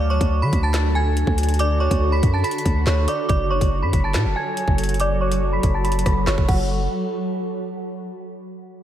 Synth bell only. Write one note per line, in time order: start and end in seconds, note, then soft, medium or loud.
0.10 0.41 C#5 medium
0.10 0.40 C#6 medium
0.42 0.58 B5 medium
0.42 0.59 B6 medium
0.63 0.93 A5 medium
0.63 0.94 A6 medium
0.95 1.55 G#5 medium
0.95 1.56 G#6 medium
1.60 1.76 D5 medium
1.60 1.75 D6 loud
1.80 2.11 C#5 medium
1.80 2.10 C#6 medium
2.12 2.28 B5 medium
2.12 2.29 B6 medium
2.34 2.42 A5 medium
2.34 2.42 A6 medium
2.44 2.84 B5 medium
2.44 2.84 B6 medium
2.87 3.03 C#5 medium
2.87 3.03 C#6 medium
3.08 3.25 D5 medium
3.08 3.24 D6 medium
3.29 3.46 D5 medium
3.29 3.45 D6 loud
3.51 3.81 C#5 medium
3.51 3.81 C#6 medium
3.83 3.99 B5 medium
3.83 3.99 B6 medium
4.04 4.34 A5 medium
4.04 4.34 A6 medium
4.36 4.96 G#5 medium
4.36 4.96 G#6 medium
5.00 5.17 D5 medium
5.00 5.16 D6 loud
5.21 5.51 C#5 medium
5.21 5.51 C#6 medium
5.53 5.69 B5 medium
5.53 5.69 B6 medium
5.74 5.82 A5 medium
5.74 5.83 A6 medium
5.84 6.25 B5 medium
5.84 6.25 B6 medium
6.27 6.44 C#5 medium
6.27 6.43 C#6 medium
6.49 6.68 F#5 medium